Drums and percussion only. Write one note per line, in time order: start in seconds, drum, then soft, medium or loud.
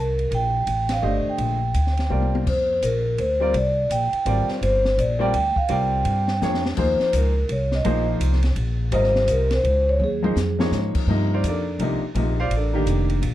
0.19 ride soft
0.32 ride medium
0.67 hi-hat pedal medium
0.67 ride medium
0.89 snare medium
0.89 ride medium
1.38 ride medium
1.74 hi-hat pedal soft
1.74 ride medium
1.87 snare soft
1.97 snare soft
1.97 ride soft
2.11 high tom soft
2.22 high tom soft
2.35 high tom medium
2.47 kick medium
2.47 crash medium
2.82 hi-hat pedal medium
2.82 ride medium
3.18 ride medium
3.54 ride medium
3.91 hi-hat pedal medium
3.91 ride medium
4.13 ride soft
4.26 ride medium
4.49 snare soft
4.63 ride medium
4.85 snare medium
4.99 hi-hat pedal medium
4.99 ride medium
5.34 ride medium
5.56 kick medium
5.69 ride medium
6.05 ride medium
6.28 snare medium
6.42 snare soft
6.42 hi-hat pedal soft
6.54 snare medium
6.66 snare medium
6.77 kick medium
6.77 crash medium
7.00 snare soft
7.13 hi-hat pedal medium
7.13 ride medium
7.49 ride medium
7.72 snare soft
7.85 ride medium
8.21 hi-hat pedal medium
8.21 ride medium
8.33 snare soft
8.43 snare soft
8.43 ride soft
8.56 ride medium
8.92 ride medium
9.04 snare soft
9.16 snare medium
9.28 hi-hat pedal medium
9.28 ride medium
9.51 snare medium
9.51 ride soft
9.65 ride medium
10.01 mid tom soft
10.24 mid tom medium
10.37 snare medium
10.37 hi-hat pedal medium
10.60 snare loud
10.72 snare medium
10.72 hi-hat pedal medium
10.95 kick medium
10.95 crash medium
11.44 hi-hat pedal medium
11.44 ride medium
11.80 ride medium
12.15 ride medium
12.51 ride medium
12.87 hi-hat pedal medium
12.87 ride medium
13.10 ride soft
13.23 ride medium